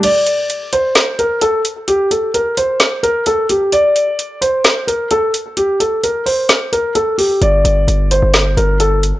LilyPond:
<<
  \new Staff \with { instrumentName = "Grand piano" } { \time 4/4 \key c \dorian \tempo 4 = 130 d''4. c''4 bes'8 a'8 r8 | g'8 a'8 bes'8 c''4 bes'8 a'8 g'8 | d''4. c''4 bes'8 a'8 r8 | g'8 a'8 bes'8 c''4 bes'8 a'8 g'8 |
d''4. c''4 bes'8 a'8 r8 | }
  \new Staff \with { instrumentName = "808-style bass" } { \clef bass \time 4/4 \key c \dorian r1 | r1 | r1 | r1 |
g,,8 g,,8 g,,8. g,,8. g,,4~ g,,16 r16 | }
  \new DrumStaff \with { instrumentName = "Drums" } \drummode { \time 4/4 <cymc hh>8 hh8 hh8 hh8 <hh sn>8 hh8 hh8 hh8 | hh8 hh8 hh8 hh8 <hh sn>8 hh8 hh8 hh8 | hh8 hh8 hh8 hh8 <hh sn>8 hh8 hh8 hh8 | hh8 hh8 hh8 hho8 <hh sn>8 hh8 hh8 hho8 |
hh8 hh8 hh8 hh8 <hh sn>8 hh8 hh8 hh8 | }
>>